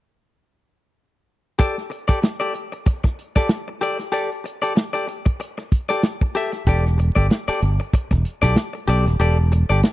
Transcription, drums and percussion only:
1.60 kick loud
1.60 closed hi-hat medium
1.78 snare soft
1.92 closed hi-hat medium
2.09 kick medium
2.09 closed hi-hat medium
2.23 snare loud
2.23 closed hi-hat medium
2.41 closed hi-hat soft
2.54 closed hi-hat medium
2.73 closed hi-hat soft
2.86 kick loud
2.86 closed hi-hat medium
3.04 kick medium
3.04 snare soft
3.19 closed hi-hat medium
3.36 kick medium
3.36 snare soft
3.36 closed hi-hat soft
3.49 snare loud
3.49 closed hi-hat medium
3.82 closed hi-hat medium
3.99 snare soft
3.99 closed hi-hat soft
4.14 closed hi-hat medium
4.32 closed hi-hat soft
4.46 closed hi-hat medium
4.63 closed hi-hat medium
4.77 snare loud
4.77 closed hi-hat medium
5.08 closed hi-hat medium
5.26 kick medium
5.26 closed hi-hat soft
5.40 closed hi-hat medium
5.58 snare soft
5.58 closed hi-hat soft
5.72 kick medium
5.72 closed hi-hat medium
5.89 snare soft
5.89 closed hi-hat medium
6.03 snare medium
6.03 closed hi-hat medium
6.21 kick medium
6.21 closed hi-hat soft
6.36 closed hi-hat medium
6.53 snare soft
6.53 closed hi-hat soft
6.67 kick loud
6.67 closed hi-hat medium
6.85 snare soft
6.99 closed hi-hat medium
7.16 kick medium
7.16 closed hi-hat soft
7.31 snare loud
7.31 closed hi-hat medium
7.62 closed hi-hat medium
7.80 closed hi-hat soft
7.93 kick medium
7.93 closed hi-hat medium
8.11 kick medium
8.11 snare soft
8.25 closed hi-hat medium
8.42 kick medium
8.42 snare soft
8.42 closed hi-hat soft
8.56 snare loud
8.56 closed hi-hat medium
8.75 closed hi-hat soft
8.89 closed hi-hat medium
9.06 snare soft
9.06 closed hi-hat soft
9.20 closed hi-hat medium
9.52 closed hi-hat medium
9.70 closed hi-hat soft
9.83 snare loud
9.83 closed hi-hat medium

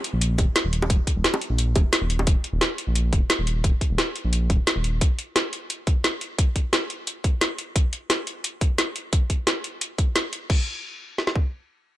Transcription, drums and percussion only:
0.04 closed hi-hat medium
0.21 closed hi-hat medium
0.38 kick loud
0.38 closed hi-hat medium
0.38 high bongo medium
0.56 snare loud
0.56 closed hi-hat medium
0.73 closed hi-hat medium
0.82 high bongo medium
0.90 kick loud
0.90 closed hi-hat medium
1.07 kick medium
1.07 closed hi-hat medium
1.24 snare loud
1.24 closed hi-hat medium
1.34 high bongo medium
1.42 closed hi-hat medium
1.58 closed hi-hat medium
1.76 kick loud
1.76 closed hi-hat medium
1.76 high bongo medium
1.93 snare loud
1.93 closed hi-hat medium
2.10 closed hi-hat medium
2.19 high bongo medium
2.27 kick loud
2.27 closed hi-hat medium
2.44 closed hi-hat medium
2.61 snare loud
2.61 closed hi-hat medium
2.78 closed hi-hat medium
2.95 closed hi-hat medium
3.13 kick loud
3.13 closed hi-hat medium
3.30 snare loud
3.30 closed hi-hat medium
3.47 closed hi-hat medium
3.64 kick loud
3.64 closed hi-hat medium
3.81 kick medium
3.81 closed hi-hat medium
3.98 snare loud
3.98 closed hi-hat medium
4.16 closed hi-hat medium
4.33 closed hi-hat medium
4.50 kick medium
4.50 closed hi-hat medium
4.67 snare loud
4.67 closed hi-hat medium
4.84 closed hi-hat medium
5.01 kick loud
5.01 closed hi-hat medium
5.19 closed hi-hat medium
5.36 snare loud
5.36 closed hi-hat medium
5.53 closed hi-hat medium
5.70 closed hi-hat medium
5.87 kick loud
5.87 closed hi-hat medium
6.04 snare loud
6.04 closed hi-hat medium
6.21 closed hi-hat medium
6.38 kick loud
6.38 closed hi-hat medium
6.56 kick medium
6.56 closed hi-hat medium
6.73 snare loud
6.73 closed hi-hat medium
6.90 closed hi-hat medium
7.07 closed hi-hat medium
7.24 kick medium
7.24 closed hi-hat medium
7.41 snare loud
7.41 closed hi-hat medium
7.58 closed hi-hat medium
7.76 kick loud
7.76 closed hi-hat medium
7.93 closed hi-hat medium
8.10 snare loud
8.10 closed hi-hat medium
8.27 closed hi-hat medium
8.44 closed hi-hat medium
8.61 kick medium
8.61 closed hi-hat medium
8.78 snare loud
8.78 closed hi-hat medium
8.96 closed hi-hat medium
9.13 kick loud
9.13 closed hi-hat medium
9.30 kick medium
9.30 closed hi-hat medium
9.47 snare loud
9.47 closed hi-hat medium
9.64 closed hi-hat medium
9.81 closed hi-hat medium
9.98 kick medium
9.98 closed hi-hat medium
10.16 snare loud
10.16 closed hi-hat medium
10.33 closed hi-hat medium
10.50 kick loud
10.50 crash medium
11.18 snare medium
11.27 snare medium
11.36 kick medium

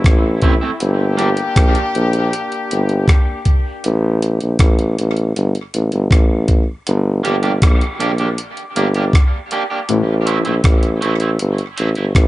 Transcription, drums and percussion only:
0.04 kick loud
0.04 cross-stick loud
0.04 closed hi-hat medium
0.42 kick medium
0.42 closed hi-hat medium
0.80 closed hi-hat loud
1.19 closed hi-hat medium
1.37 closed hi-hat soft
1.56 kick loud
1.56 cross-stick loud
1.56 closed hi-hat loud
1.75 closed hi-hat medium
1.95 closed hi-hat medium
2.13 closed hi-hat medium
2.33 closed hi-hat medium
2.52 closed hi-hat soft
2.71 closed hi-hat medium
2.89 closed hi-hat soft
3.08 kick loud
3.08 cross-stick loud
3.08 closed hi-hat medium
3.45 kick medium
3.45 closed hi-hat medium
3.84 closed hi-hat medium
4.22 closed hi-hat medium
4.41 closed hi-hat medium
4.59 kick loud
4.59 cross-stick loud
4.59 closed hi-hat loud
4.79 closed hi-hat medium
4.99 closed hi-hat medium
5.17 closed hi-hat soft
5.36 closed hi-hat medium
5.55 closed hi-hat soft
5.74 closed hi-hat medium
5.92 closed hi-hat soft
6.11 kick loud
6.11 cross-stick loud
6.11 closed hi-hat medium
6.48 kick medium
6.48 closed hi-hat medium
6.87 closed hi-hat medium
7.25 closed hi-hat medium
7.43 closed hi-hat medium
7.62 kick loud
7.62 cross-stick loud
7.62 closed hi-hat loud
7.81 closed hi-hat medium
8.00 closed hi-hat medium
8.18 closed hi-hat medium
8.38 closed hi-hat medium
8.57 closed hi-hat medium
8.76 closed hi-hat medium
8.94 closed hi-hat soft
9.13 kick loud
9.13 cross-stick loud
9.13 closed hi-hat medium
9.51 closed hi-hat medium
9.89 closed hi-hat medium
10.27 closed hi-hat medium
10.45 closed hi-hat medium
10.64 kick loud
10.64 cross-stick loud
10.64 closed hi-hat loud
10.83 closed hi-hat medium
11.02 closed hi-hat medium
11.20 closed hi-hat medium
11.39 closed hi-hat medium
11.58 closed hi-hat medium
11.78 closed hi-hat medium
11.95 closed hi-hat soft
12.15 kick loud
12.15 cross-stick loud
12.15 closed hi-hat medium

